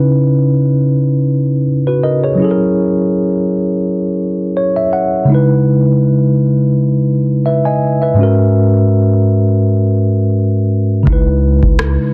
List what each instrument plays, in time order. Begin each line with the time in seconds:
Already playing: tine electric piano C#3 C#4 D#4 E4 B4
1.87 tine electric piano F#4 B4
2.03 tine electric piano A#4 D#5
2.24 tine electric piano G#4 C#5
2.35 tine electric piano F#3 C#4
2.40 tine electric piano E4 G#4
2.45 tine electric piano A4
2.51 tine electric piano A#4
4.57 tine electric piano C#5
4.76 tine electric piano E5
4.93 tine electric piano F#5
5.25 tine electric piano C#3 G#3
5.30 tine electric piano D#4 E4
5.34 tine electric piano B4
7.46 tine electric piano B4 E5
7.65 tine electric piano D#5 G#5
8.02 tine electric piano B4 E5
8.14 tine electric piano G#2 G#3
8.18 tine electric piano C#4 F#4
8.23 tine electric piano A#4
11.03 tine electric piano C#3 G#3
11.07 808-style bass C#2, tine electric piano D#4 E4, kick
11.13 tine electric piano B4
11.63 808-style bass C#2, kick
11.79 cross-stick